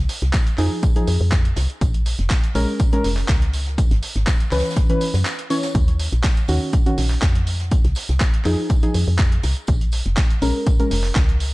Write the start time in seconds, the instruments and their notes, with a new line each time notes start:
0.09 snare, open hi-hat, tambourine
0.22 fm bass C2, snare, closed hi-hat
0.33 kick, snare, clap, closed hi-hat, tambourine
0.47 closed hi-hat
0.58 fm bass F2, synth stab F3 D#4 G#4, clap, open hi-hat, tambourine
0.83 kick, closed hi-hat, tambourine
0.96 synth stab F3 D#4 G#4, closed hi-hat
1.07 fm bass F2, open hi-hat, tambourine
1.21 fm bass F2
1.32 kick, snare, clap, closed hi-hat, tambourine
1.45 closed hi-hat
1.56 fm bass C2, snare, open hi-hat, tambourine
1.70 closed hi-hat
1.81 fm bass A#1, kick, closed hi-hat, tambourine
1.94 closed hi-hat
2.06 open hi-hat, tambourine
2.19 fm bass F1, snare, closed hi-hat
2.30 kick, snare, clap, closed hi-hat, tambourine
2.44 closed hi-hat
2.55 fm bass A#1, synth stab G#3 C#4 A#4, open hi-hat, tambourine
2.80 kick, closed hi-hat, tambourine
2.93 synth stab G#3 C#4 A#4, closed hi-hat
3.04 fm bass F1, snare, open hi-hat
3.17 clap, closed hi-hat
3.28 fm bass C#2, kick, snare, clap, closed hi-hat, tambourine
3.42 closed hi-hat
3.53 open hi-hat, tambourine
3.67 snare, closed hi-hat
3.78 kick, closed hi-hat, tambourine
3.91 fm bass G#1, snare, closed hi-hat
4.02 snare, open hi-hat, tambourine
4.16 fm bass G#1, snare, closed hi-hat
4.27 kick, snare, clap, closed hi-hat, tambourine
4.40 closed hi-hat
4.51 fm bass C#2, synth stab E3 C#4 B4, snare, clap, open hi-hat, tambourine
4.58 snare, tambourine
4.65 snare, closed hi-hat, tambourine
4.70 snare, tambourine
4.76 kick, snare, closed hi-hat, tambourine
4.89 synth stab E3 C#4 B4, closed hi-hat
5.01 open hi-hat, tambourine
5.14 fm bass F#2, snare, tambourine
5.25 snare, clap, closed hi-hat, tambourine
5.39 closed hi-hat
5.50 synth stab E3 C#4 C#5, open hi-hat, tambourine
5.63 snare, closed hi-hat, tambourine
5.75 fm bass D#2, kick, closed hi-hat
5.88 closed hi-hat
5.99 open hi-hat, tambourine
6.12 fm bass A#1, snare, closed hi-hat
6.24 kick, snare, clap, closed hi-hat, tambourine
6.37 closed hi-hat
6.48 fm bass D#2, synth stab D#3 C#4 F#4, open hi-hat, tambourine
6.73 kick, closed hi-hat, tambourine
6.86 synth stab D#3 C#4 F#4, closed hi-hat
6.98 fm bass A#1, snare, open hi-hat
7.10 clap, closed hi-hat
7.22 fm bass F2, kick, snare, clap, closed hi-hat, tambourine
7.35 closed hi-hat
7.47 open hi-hat, tambourine
7.60 snare, closed hi-hat
7.71 kick, closed hi-hat, tambourine
7.84 fm bass C2, snare, closed hi-hat
7.95 snare, open hi-hat, tambourine
8.09 fm bass C2, snare, closed hi-hat
8.20 kick, snare, clap, closed hi-hat, tambourine
8.34 closed hi-hat
8.45 fm bass F2, synth stab F3 D#4 G#4, clap, open hi-hat, tambourine
8.70 kick, closed hi-hat, tambourine
8.83 synth stab F3 D#4 G#4, closed hi-hat
8.94 fm bass F2, open hi-hat, tambourine
9.08 fm bass F2
9.19 kick, snare, clap, closed hi-hat, tambourine
9.32 closed hi-hat
9.43 fm bass C2, snare, open hi-hat, tambourine
9.57 closed hi-hat
9.67 fm bass A#1, kick, closed hi-hat, tambourine
9.81 closed hi-hat
9.92 open hi-hat, tambourine
10.06 fm bass F1, snare, closed hi-hat
10.17 kick, snare, clap, closed hi-hat, tambourine
10.30 closed hi-hat
10.42 fm bass A#1, synth stab G#3 C#4 A#4, open hi-hat, tambourine
10.67 kick, closed hi-hat, tambourine
10.79 synth stab G#3 C#4 A#4, closed hi-hat
10.91 fm bass F1, snare, open hi-hat
11.04 clap, closed hi-hat
11.15 fm bass C#2, kick, snare, clap, closed hi-hat, tambourine
11.29 closed hi-hat
11.40 open hi-hat, tambourine